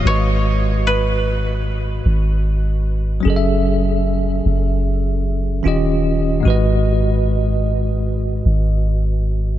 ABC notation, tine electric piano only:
X:1
M:4/4
L:1/8
Q:1/4=75
K:G#phr
V:1 name="Tine electric piano"
[G,,G,FBd]8 | [F,CGAde]6 [D,C^E=Gd]2 | [G,,G,FBd]8 |]